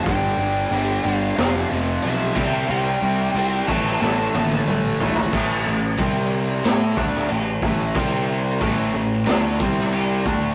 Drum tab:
CC |--------------x-|------x---------|x---x---x---x---|x---x---x---x---|
HH |o---o---o---o---|----o-----------|----------------|----------------|
SD |--------o-------|-------oo-------|--------o--o----|--------o--o----|
T1 |----------------|----------oo----|----------------|----------------|
T2 |----------------|------------o---|----------------|----------------|
FT |----------------|--------------oo|----------------|----------------|
BD |o-------------o-|------o---------|o---o-----o---o-|o---o-----o---o-|